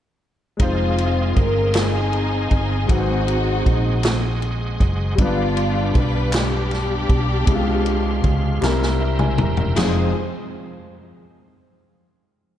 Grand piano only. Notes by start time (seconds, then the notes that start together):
0.57 G#3 C4 D#4
0.62 F4 C5
2.86 G#2 G#3 C4 D#4
2.91 F#4 B4
2.99 C5
5.15 G2 G3 B3 D4
5.21 F4 B4
7.45 C3 G#3 E4
7.55 F4
8.61 C3 G3 E4 A#4
9.00 E5
9.19 G#5
9.39 A#5
9.77 F2 F3 G#3 C4 D#4 G#4